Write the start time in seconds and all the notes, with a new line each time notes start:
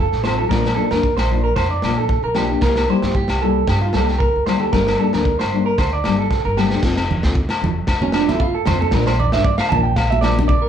0.00 A4
0.12 A1, snare
0.24 F3 C4 F4 A4 C5, snare, low agogo
0.38 F4 A4
0.48 A#1 F3 A#3 D4 A#4, kick, snare
0.65 snare, low agogo
0.75 F3 A#3 D4 A4 A#4
0.91 F2 A#3 D4 A#4, snare
1.03 kick
1.16 A#1 C5, snare, low agogo
1.30 F3 A#3 D4 A#4
1.44 A#4
1.56 F2 C5, kick, snare, low agogo
1.71 D5
1.82 A#1 F3 A#3 D4 A#4, snare, low agogo
1.98 A4
2.09 kick
2.23 B1 A#4
2.34 F3 A#3 D4 G4 A#4, snare, low agogo
2.50 A#3 D4 A#4
2.61 C2 A#3 E4 G4 A#4, muted nylon-string guitar stroke, kick, snare
2.76 snare, low agogo
2.88 G3 A#3 E4 G4 C5
3.03 G2 A#3 E4 G4, snare
3.15 G4, kick
3.28 C2, snare, low agogo
3.42 G3 A#3 E4 G4 A4
3.67 G2 G4, kick, snare, low agogo
3.82 F4
3.93 C2 G3 A#3 E4 G4 A4, snare, low agogo
4.08 G4, snare
4.19 A#4, kick
4.36 D2
4.46 G3 A#3 E4 C5, muted nylon-string guitar stroke, snare, low agogo
4.60 A#3 G4 A4
4.71 G1 G3 A#3 D4 A4 A#4, kick, snare
4.87 snare, low agogo
4.97 G3 A#3 D4 A4
5.11 D2 A#3 D4 A4 A#4, snare
5.25 kick
5.39 G1 C5, snare, low agogo
5.53 G3 A#3 D4 A4
5.66 A#4
5.78 D2 C5, kick, snare, low agogo
5.93 D5
6.04 G1 G3 A#3 D4 A4, snare, low agogo
6.19 A4
6.31 kick, snare
6.45 G1 A#4
6.57 G3 A#3 D4 G4 A4, snare, low agogo
6.70 A#3 D4 A4, snare
6.82 F1 C4 F4 A4, muted nylon-string guitar stroke, kick, snare, crash
6.96 snare, low agogo
7.11 low conga
7.23 D2 C4 F4 A4, snare
7.35 kick
7.49 snare, low agogo
7.62 F1 F3 F4 A4, muted nylon-string guitar stroke, low conga
7.87 kick, snare, low agogo
8.02 C#4, high conga
8.12 F3 C4 D4 F4, snare, low agogo
8.17 A4
8.28 E4 F4 A4, snare, high conga
8.32 C4
8.40 F4, kick
8.54 A4
8.66 F2 F3 C5, snare, low conga, low agogo
8.70 C4 F4 A4
8.81 A4, high conga
8.91 A#1 F3 A#3 D4 A#4, kick, snare
9.06 C5, snare, low agogo
9.20 D5, low conga
9.32 G1 A#3 D4 A#4 E5, snare
9.44 D5, kick
9.58 F5, snare, low agogo
9.69 A#1 F3 A#3 D4 A5, low conga
9.73 A#4
9.83 G5
9.96 F5, kick, snare, low agogo
10.10 E5, high conga
10.21 F3 A#3 D4 A#4 D5, snare, low agogo
10.38 A#3 D4 A#4, high conga
10.48 D5, kick
10.62 A#4